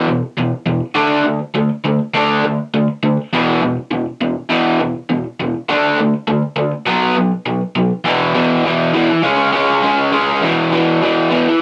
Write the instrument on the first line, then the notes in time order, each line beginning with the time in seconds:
overdriven electric guitar
0.07 E2 B2
0.37 E2 B2
0.66 E2 B2
0.95 D3 A3 D4
1.24 D3 A3
1.54 D3 A3
1.84 D3 A3
2.14 D3 A3 D4
2.44 D3 A3
2.74 D3 A3
3.03 D3 A3
3.33 E2 B2 E3
3.62 E2 B2
3.91 E2 B2
4.21 E2 B2
4.50 E2 B2 E3
4.80 E2 B2
5.10 E2 B2
5.40 E2 B2
5.69 D3 A3 D4
5.99 D3 A3
6.28 D3 A3
6.56 D3 A3
6.86 B2 F#3 B3
7.16 B2 F#3
7.46 B2 F#3
7.75 B2 F#3
8.04 E2 B2 E3
8.34 E2 B2 E3
8.65 E2 B2 E3
8.94 E2 B2 E3
9.23 C#3 G#3 C#4
9.52 C#3 G#3 C#4
9.83 C#3 G#3 C#4
10.12 C#3 G#3 C#4
10.42 E2 B2 E3
10.72 E2 B2 E3
11.01 E2 B2 E3
11.30 E2 B2 E3